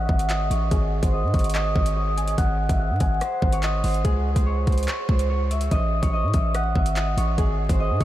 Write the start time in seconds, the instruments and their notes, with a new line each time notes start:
Already playing: harp C#5 F#5
0.09 808-style bass G#1, harp E5, kick
0.19 closed hi-hat
0.29 harp D#5, clap, closed hi-hat
0.51 808-style bass A1, harp C#5, closed hi-hat
0.71 808-style bass G#1, harp G#4, kick, closed hi-hat
1.03 808-style bass G#1, harp C5, kick, closed hi-hat
1.13 harp D#5
1.24 808-style bass G#2
1.34 808-style bass G#1, harp C#5, kick, closed hi-hat
1.39 closed hi-hat
1.44 closed hi-hat
1.50 closed hi-hat
1.55 harp D#5, clap, closed hi-hat
1.75 808-style bass G#1, harp C#5, kick
1.86 closed hi-hat
1.96 harp D#5
2.17 harp G#5, closed hi-hat
2.27 closed hi-hat
2.38 808-style bass G#1, harp F#5, kick, closed hi-hat
2.69 808-style bass G#1, harp E5, kick, closed hi-hat
2.79 harp F#5
2.90 808-style bass G#2
3.00 808-style bass G#1, harp G#5, kick, closed hi-hat
3.21 harp C5, cross-stick, closed hi-hat
3.42 808-style bass G#1, kick
3.52 harp C#5, closed hi-hat
3.63 harp D#5, clap, closed hi-hat
3.84 808-style bass G#1, harp C5, closed hi-hat, open hi-hat
3.94 closed hi-hat
4.05 808-style bass C#2, harp G#4, kick, closed hi-hat
4.36 808-style bass C#2, harp C5, kick, closed hi-hat
4.46 harp C#5
4.67 808-style bass C#2, harp C5, kick, closed hi-hat
4.72 closed hi-hat
4.78 closed hi-hat
4.83 closed hi-hat
4.88 harp C#5, clap, closed hi-hat
5.09 808-style bass C#2, harp C5, kick
5.19 closed hi-hat
5.30 harp C#5
5.51 harp E5, closed hi-hat
5.61 closed hi-hat
5.71 808-style bass A1, harp D#5, kick, closed hi-hat
6.03 808-style bass A1, harp C#5, kick, closed hi-hat
6.13 harp D#5
6.23 808-style bass A2
6.34 808-style bass A1, harp E5, kick, closed hi-hat
6.55 harp F#5, cross-stick, closed hi-hat
6.75 808-style bass G#1, harp E5, kick
6.86 closed hi-hat
6.96 harp D#5, clap, closed hi-hat
7.17 808-style bass A1, harp C#5, closed hi-hat
7.38 808-style bass G#1, harp G#4, kick, closed hi-hat, riser
7.69 808-style bass G#1, harp C5, kick, closed hi-hat
7.80 harp D#5
7.90 808-style bass G#2
8.01 808-style bass G#1, harp C#5, kick, closed hi-hat